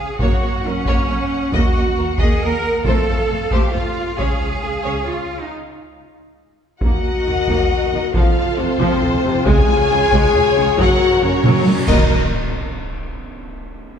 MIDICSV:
0, 0, Header, 1, 11, 480
1, 0, Start_track
1, 0, Key_signature, -6, "minor"
1, 0, Tempo, 440852
1, 223, Time_signature, 3, 2, 24, 8
1, 15232, End_track
2, 0, Start_track
2, 0, Title_t, "Violin section"
2, 0, Program_c, 0, 48
2, 0, Note_on_c, 0, 77, 49
2, 184, Note_off_c, 0, 77, 0
2, 209, Note_on_c, 0, 78, 53
2, 3056, Note_off_c, 0, 78, 0
2, 3137, Note_on_c, 0, 77, 61
2, 5961, Note_off_c, 0, 77, 0
2, 7409, Note_on_c, 0, 78, 73
2, 8815, Note_off_c, 0, 78, 0
2, 8859, Note_on_c, 0, 77, 77
2, 9335, Note_off_c, 0, 77, 0
2, 9358, Note_on_c, 0, 72, 85
2, 10313, Note_off_c, 0, 72, 0
2, 10325, Note_on_c, 0, 80, 122
2, 11727, Note_off_c, 0, 80, 0
2, 11764, Note_on_c, 0, 78, 100
2, 12225, Note_off_c, 0, 78, 0
2, 12237, Note_on_c, 0, 73, 89
2, 12928, Note_on_c, 0, 75, 77
2, 12936, Note_off_c, 0, 73, 0
2, 13204, Note_off_c, 0, 75, 0
2, 15232, End_track
3, 0, Start_track
3, 0, Title_t, "Violin section"
3, 0, Program_c, 1, 48
3, 221, Note_on_c, 1, 73, 57
3, 446, Note_off_c, 1, 73, 0
3, 456, Note_on_c, 1, 73, 35
3, 544, Note_off_c, 1, 73, 0
3, 717, Note_on_c, 1, 70, 41
3, 804, Note_off_c, 1, 70, 0
3, 945, Note_on_c, 1, 73, 60
3, 1166, Note_off_c, 1, 73, 0
3, 1179, Note_on_c, 1, 73, 47
3, 1266, Note_off_c, 1, 73, 0
3, 1669, Note_on_c, 1, 75, 57
3, 1891, Note_off_c, 1, 75, 0
3, 1908, Note_on_c, 1, 75, 47
3, 1996, Note_off_c, 1, 75, 0
3, 2150, Note_on_c, 1, 70, 47
3, 2237, Note_off_c, 1, 70, 0
3, 2382, Note_on_c, 1, 75, 61
3, 2607, Note_off_c, 1, 75, 0
3, 2644, Note_on_c, 1, 75, 51
3, 2731, Note_off_c, 1, 75, 0
3, 3116, Note_on_c, 1, 72, 60
3, 3335, Note_off_c, 1, 72, 0
3, 3363, Note_on_c, 1, 72, 39
3, 3451, Note_off_c, 1, 72, 0
3, 3592, Note_on_c, 1, 69, 47
3, 3680, Note_off_c, 1, 69, 0
3, 3833, Note_on_c, 1, 72, 65
3, 4047, Note_off_c, 1, 72, 0
3, 4060, Note_on_c, 1, 72, 46
3, 4147, Note_off_c, 1, 72, 0
3, 4548, Note_on_c, 1, 73, 53
3, 4768, Note_off_c, 1, 73, 0
3, 4781, Note_on_c, 1, 73, 39
3, 4868, Note_off_c, 1, 73, 0
3, 5031, Note_on_c, 1, 68, 37
3, 5118, Note_off_c, 1, 68, 0
3, 5262, Note_on_c, 1, 73, 52
3, 5489, Note_off_c, 1, 73, 0
3, 5506, Note_on_c, 1, 73, 38
3, 5593, Note_off_c, 1, 73, 0
3, 7448, Note_on_c, 1, 70, 53
3, 7449, Note_on_c, 1, 75, 50
3, 8835, Note_off_c, 1, 70, 0
3, 8836, Note_off_c, 1, 75, 0
3, 8886, Note_on_c, 1, 72, 66
3, 8890, Note_on_c, 1, 69, 66
3, 10288, Note_off_c, 1, 72, 0
3, 10318, Note_off_c, 1, 69, 0
3, 10322, Note_on_c, 1, 68, 80
3, 10334, Note_on_c, 1, 73, 84
3, 11725, Note_off_c, 1, 68, 0
3, 11739, Note_on_c, 1, 70, 81
3, 12918, Note_off_c, 1, 70, 0
3, 12930, Note_on_c, 1, 70, 69
3, 12940, Note_on_c, 1, 75, 73
3, 12958, Note_off_c, 1, 73, 0
3, 13205, Note_off_c, 1, 70, 0
3, 13210, Note_off_c, 1, 75, 0
3, 15232, End_track
4, 0, Start_track
4, 0, Title_t, "French horn section"
4, 0, Program_c, 2, 60
4, 242, Note_on_c, 2, 66, 50
4, 245, Note_on_c, 2, 58, 54
4, 403, Note_off_c, 2, 66, 0
4, 405, Note_off_c, 2, 58, 0
4, 1663, Note_on_c, 2, 58, 55
4, 1664, Note_on_c, 2, 66, 54
4, 1831, Note_off_c, 2, 58, 0
4, 1832, Note_off_c, 2, 66, 0
4, 3112, Note_on_c, 2, 60, 58
4, 3117, Note_on_c, 2, 65, 53
4, 3278, Note_off_c, 2, 60, 0
4, 3281, Note_off_c, 2, 65, 0
4, 4565, Note_on_c, 2, 65, 52
4, 4566, Note_on_c, 2, 61, 50
4, 4726, Note_off_c, 2, 65, 0
4, 4727, Note_off_c, 2, 61, 0
4, 7422, Note_on_c, 2, 66, 76
4, 8822, Note_off_c, 2, 66, 0
4, 8876, Note_on_c, 2, 65, 92
4, 9343, Note_off_c, 2, 65, 0
4, 9344, Note_on_c, 2, 60, 99
4, 10304, Note_on_c, 2, 68, 127
4, 10306, Note_off_c, 2, 60, 0
4, 11738, Note_on_c, 2, 66, 109
4, 11745, Note_off_c, 2, 68, 0
4, 12212, Note_off_c, 2, 66, 0
4, 12234, Note_on_c, 2, 61, 93
4, 12949, Note_off_c, 2, 61, 0
4, 12963, Note_on_c, 2, 63, 85
4, 13158, Note_off_c, 2, 63, 0
4, 15232, End_track
5, 0, Start_track
5, 0, Title_t, "Viola section"
5, 0, Program_c, 3, 48
5, 225, Note_on_c, 3, 58, 59
5, 447, Note_off_c, 3, 58, 0
5, 463, Note_on_c, 3, 58, 44
5, 550, Note_off_c, 3, 58, 0
5, 710, Note_on_c, 3, 58, 43
5, 797, Note_off_c, 3, 58, 0
5, 949, Note_on_c, 3, 58, 62
5, 1170, Note_off_c, 3, 58, 0
5, 1199, Note_on_c, 3, 58, 43
5, 1286, Note_off_c, 3, 58, 0
5, 1673, Note_on_c, 3, 58, 60
5, 1893, Note_off_c, 3, 58, 0
5, 1921, Note_on_c, 3, 58, 42
5, 2008, Note_off_c, 3, 58, 0
5, 2158, Note_on_c, 3, 58, 47
5, 2245, Note_off_c, 3, 58, 0
5, 2412, Note_on_c, 3, 58, 61
5, 2623, Note_off_c, 3, 58, 0
5, 2660, Note_on_c, 3, 58, 48
5, 2747, Note_off_c, 3, 58, 0
5, 3132, Note_on_c, 3, 57, 67
5, 3344, Note_off_c, 3, 57, 0
5, 3368, Note_on_c, 3, 57, 48
5, 3455, Note_off_c, 3, 57, 0
5, 3598, Note_on_c, 3, 57, 38
5, 3685, Note_off_c, 3, 57, 0
5, 3841, Note_on_c, 3, 57, 62
5, 4058, Note_off_c, 3, 57, 0
5, 4077, Note_on_c, 3, 57, 50
5, 4164, Note_off_c, 3, 57, 0
5, 4561, Note_on_c, 3, 61, 62
5, 4779, Note_off_c, 3, 61, 0
5, 4803, Note_on_c, 3, 61, 43
5, 4890, Note_off_c, 3, 61, 0
5, 5040, Note_on_c, 3, 61, 35
5, 5127, Note_off_c, 3, 61, 0
5, 5278, Note_on_c, 3, 61, 56
5, 5497, Note_off_c, 3, 61, 0
5, 5526, Note_on_c, 3, 61, 36
5, 5613, Note_off_c, 3, 61, 0
5, 7432, Note_on_c, 3, 66, 53
5, 7437, Note_on_c, 3, 58, 55
5, 7657, Note_off_c, 3, 58, 0
5, 7913, Note_on_c, 3, 51, 43
5, 8000, Note_off_c, 3, 51, 0
5, 8153, Note_on_c, 3, 58, 66
5, 8375, Note_off_c, 3, 58, 0
5, 8631, Note_on_c, 3, 51, 53
5, 8718, Note_off_c, 3, 51, 0
5, 8827, Note_off_c, 3, 66, 0
5, 8867, Note_on_c, 3, 65, 68
5, 8869, Note_on_c, 3, 53, 66
5, 9092, Note_off_c, 3, 53, 0
5, 9349, Note_on_c, 3, 48, 56
5, 9437, Note_off_c, 3, 48, 0
5, 9584, Note_on_c, 3, 53, 80
5, 9810, Note_off_c, 3, 53, 0
5, 10076, Note_on_c, 3, 48, 75
5, 10163, Note_off_c, 3, 48, 0
5, 10302, Note_on_c, 3, 56, 86
5, 10528, Note_off_c, 3, 56, 0
5, 10794, Note_on_c, 3, 49, 62
5, 10881, Note_off_c, 3, 49, 0
5, 11034, Note_on_c, 3, 56, 83
5, 11254, Note_off_c, 3, 56, 0
5, 11500, Note_on_c, 3, 49, 71
5, 11587, Note_off_c, 3, 49, 0
5, 11702, Note_off_c, 3, 65, 0
5, 11732, Note_on_c, 3, 66, 76
5, 11739, Note_on_c, 3, 54, 83
5, 11966, Note_off_c, 3, 54, 0
5, 12212, Note_on_c, 3, 49, 59
5, 12300, Note_off_c, 3, 49, 0
5, 12467, Note_on_c, 3, 54, 82
5, 12689, Note_off_c, 3, 54, 0
5, 12919, Note_off_c, 3, 66, 0
5, 12932, Note_on_c, 3, 66, 70
5, 12934, Note_on_c, 3, 70, 71
5, 13206, Note_off_c, 3, 66, 0
5, 13207, Note_off_c, 3, 70, 0
5, 15232, End_track
6, 0, Start_track
6, 0, Title_t, "Cello section"
6, 0, Program_c, 4, 48
6, 0, Note_on_c, 4, 68, 65
6, 202, Note_off_c, 4, 68, 0
6, 223, Note_on_c, 4, 66, 65
6, 694, Note_off_c, 4, 66, 0
6, 707, Note_on_c, 4, 61, 75
6, 1667, Note_off_c, 4, 61, 0
6, 1671, Note_on_c, 4, 66, 69
6, 2375, Note_off_c, 4, 66, 0
6, 2390, Note_on_c, 4, 68, 73
6, 2624, Note_off_c, 4, 68, 0
6, 2636, Note_on_c, 4, 70, 83
6, 3109, Note_on_c, 4, 69, 72
6, 3112, Note_off_c, 4, 70, 0
6, 3814, Note_off_c, 4, 69, 0
6, 3832, Note_on_c, 4, 67, 76
6, 4070, Note_off_c, 4, 67, 0
6, 4077, Note_on_c, 4, 65, 73
6, 4543, Note_off_c, 4, 65, 0
6, 4559, Note_on_c, 4, 68, 65
6, 5515, Note_off_c, 4, 68, 0
6, 5521, Note_on_c, 4, 65, 58
6, 5876, Note_off_c, 4, 65, 0
6, 5886, Note_on_c, 4, 63, 49
6, 5998, Note_off_c, 4, 63, 0
6, 7438, Note_on_c, 4, 39, 49
6, 7525, Note_off_c, 4, 39, 0
6, 7922, Note_on_c, 4, 39, 46
6, 8009, Note_off_c, 4, 39, 0
6, 8150, Note_on_c, 4, 39, 67
6, 8237, Note_off_c, 4, 39, 0
6, 8634, Note_on_c, 4, 39, 46
6, 8721, Note_off_c, 4, 39, 0
6, 8878, Note_on_c, 4, 41, 61
6, 8965, Note_off_c, 4, 41, 0
6, 9358, Note_on_c, 4, 41, 56
6, 9445, Note_off_c, 4, 41, 0
6, 9585, Note_on_c, 4, 41, 84
6, 9672, Note_off_c, 4, 41, 0
6, 10071, Note_on_c, 4, 41, 59
6, 10158, Note_off_c, 4, 41, 0
6, 10310, Note_on_c, 4, 37, 83
6, 10398, Note_off_c, 4, 37, 0
6, 10782, Note_on_c, 4, 37, 70
6, 10869, Note_off_c, 4, 37, 0
6, 11015, Note_on_c, 4, 37, 91
6, 11102, Note_off_c, 4, 37, 0
6, 11502, Note_on_c, 4, 37, 63
6, 11589, Note_off_c, 4, 37, 0
6, 11729, Note_on_c, 4, 42, 74
6, 11816, Note_off_c, 4, 42, 0
6, 12211, Note_on_c, 4, 42, 64
6, 12298, Note_off_c, 4, 42, 0
6, 12452, Note_on_c, 4, 42, 83
6, 12539, Note_off_c, 4, 42, 0
6, 12941, Note_on_c, 4, 39, 75
6, 13211, Note_off_c, 4, 39, 0
6, 15232, End_track
7, 0, Start_track
7, 0, Title_t, "Double bass section"
7, 0, Program_c, 5, 48
7, 230, Note_on_c, 5, 42, 59
7, 317, Note_off_c, 5, 42, 0
7, 469, Note_on_c, 5, 42, 42
7, 556, Note_off_c, 5, 42, 0
7, 713, Note_on_c, 5, 42, 45
7, 800, Note_off_c, 5, 42, 0
7, 958, Note_on_c, 5, 42, 59
7, 1045, Note_off_c, 5, 42, 0
7, 1192, Note_on_c, 5, 42, 44
7, 1280, Note_off_c, 5, 42, 0
7, 1666, Note_on_c, 5, 39, 65
7, 1753, Note_off_c, 5, 39, 0
7, 1916, Note_on_c, 5, 39, 41
7, 2003, Note_off_c, 5, 39, 0
7, 2152, Note_on_c, 5, 39, 48
7, 2239, Note_off_c, 5, 39, 0
7, 2391, Note_on_c, 5, 39, 67
7, 2478, Note_off_c, 5, 39, 0
7, 2637, Note_on_c, 5, 39, 45
7, 2724, Note_off_c, 5, 39, 0
7, 3110, Note_on_c, 5, 41, 66
7, 3197, Note_off_c, 5, 41, 0
7, 3360, Note_on_c, 5, 41, 42
7, 3447, Note_off_c, 5, 41, 0
7, 3598, Note_on_c, 5, 41, 46
7, 3685, Note_off_c, 5, 41, 0
7, 3837, Note_on_c, 5, 41, 58
7, 3924, Note_off_c, 5, 41, 0
7, 4079, Note_on_c, 5, 41, 44
7, 4166, Note_off_c, 5, 41, 0
7, 4557, Note_on_c, 5, 37, 59
7, 4644, Note_off_c, 5, 37, 0
7, 4805, Note_on_c, 5, 37, 41
7, 4892, Note_off_c, 5, 37, 0
7, 5044, Note_on_c, 5, 37, 39
7, 5131, Note_off_c, 5, 37, 0
7, 5282, Note_on_c, 5, 37, 55
7, 5369, Note_off_c, 5, 37, 0
7, 5513, Note_on_c, 5, 37, 36
7, 5600, Note_off_c, 5, 37, 0
7, 7433, Note_on_c, 5, 39, 61
7, 7520, Note_off_c, 5, 39, 0
7, 7922, Note_on_c, 5, 39, 47
7, 8009, Note_off_c, 5, 39, 0
7, 8163, Note_on_c, 5, 39, 65
7, 8250, Note_off_c, 5, 39, 0
7, 8649, Note_on_c, 5, 39, 48
7, 8736, Note_off_c, 5, 39, 0
7, 8889, Note_on_c, 5, 29, 71
7, 8976, Note_off_c, 5, 29, 0
7, 9365, Note_on_c, 5, 29, 54
7, 9452, Note_off_c, 5, 29, 0
7, 9596, Note_on_c, 5, 29, 83
7, 9684, Note_off_c, 5, 29, 0
7, 10070, Note_on_c, 5, 29, 64
7, 10157, Note_off_c, 5, 29, 0
7, 10315, Note_on_c, 5, 37, 91
7, 10402, Note_off_c, 5, 37, 0
7, 10784, Note_on_c, 5, 37, 73
7, 10871, Note_off_c, 5, 37, 0
7, 11027, Note_on_c, 5, 37, 90
7, 11114, Note_off_c, 5, 37, 0
7, 11511, Note_on_c, 5, 37, 70
7, 11598, Note_off_c, 5, 37, 0
7, 11743, Note_on_c, 5, 30, 91
7, 11830, Note_off_c, 5, 30, 0
7, 12226, Note_on_c, 5, 30, 62
7, 12313, Note_off_c, 5, 30, 0
7, 12466, Note_on_c, 5, 30, 80
7, 12553, Note_off_c, 5, 30, 0
7, 12947, Note_on_c, 5, 39, 75
7, 13214, Note_off_c, 5, 39, 0
7, 15232, End_track
8, 0, Start_track
8, 0, Title_t, "Impact"
8, 0, Program_c, 6, 103
8, 12943, Note_on_c, 6, 60, 66
8, 14383, Note_off_c, 6, 60, 0
8, 15232, End_track
9, 0, Start_track
9, 0, Title_t, "Reverse cymbal"
9, 0, Program_c, 7, 119
9, 11749, Note_on_c, 7, 60, 75
9, 12946, Note_off_c, 7, 60, 0
9, 15232, End_track
10, 0, Start_track
10, 0, Title_t, "Taiko and cinematic ensemble drums"
10, 209, Note_on_c, 9, 41, 82
10, 318, Note_off_c, 9, 41, 0
10, 929, Note_on_c, 9, 41, 69
10, 1038, Note_off_c, 9, 41, 0
10, 1657, Note_on_c, 9, 41, 86
10, 1766, Note_off_c, 9, 41, 0
10, 2372, Note_on_c, 9, 41, 69
10, 2481, Note_off_c, 9, 41, 0
10, 3103, Note_on_c, 9, 41, 88
10, 3212, Note_off_c, 9, 41, 0
10, 3820, Note_on_c, 9, 41, 65
10, 3929, Note_off_c, 9, 41, 0
10, 4550, Note_on_c, 9, 41, 56
10, 4659, Note_off_c, 9, 41, 0
10, 7420, Note_on_c, 9, 41, 89
10, 7529, Note_off_c, 9, 41, 0
10, 8143, Note_on_c, 9, 41, 73
10, 8252, Note_off_c, 9, 41, 0
10, 8862, Note_on_c, 9, 41, 90
10, 8971, Note_off_c, 9, 41, 0
10, 9572, Note_on_c, 9, 41, 78
10, 9681, Note_off_c, 9, 41, 0
10, 9824, Note_on_c, 9, 43, 58
10, 9933, Note_off_c, 9, 43, 0
10, 10295, Note_on_c, 9, 41, 101
10, 10404, Note_off_c, 9, 41, 0
10, 11018, Note_on_c, 9, 41, 81
10, 11127, Note_off_c, 9, 41, 0
10, 11255, Note_on_c, 9, 43, 67
10, 11364, Note_off_c, 9, 43, 0
10, 11740, Note_on_c, 9, 41, 99
10, 11849, Note_off_c, 9, 41, 0
10, 12449, Note_on_c, 9, 47, 76
10, 12558, Note_off_c, 9, 47, 0
10, 12681, Note_on_c, 9, 48, 90
10, 12790, Note_off_c, 9, 48, 0
10, 12927, Note_on_c, 9, 41, 97
10, 13035, Note_off_c, 9, 41, 0
10, 15232, End_track
11, 0, Start_track
11, 0, Title_t, "Drums"
11, 12940, Note_on_c, 9, 35, 76
11, 12940, Note_on_c, 9, 49, 75
11, 13049, Note_off_c, 9, 35, 0
11, 13049, Note_off_c, 9, 49, 0
11, 15232, End_track
0, 0, End_of_file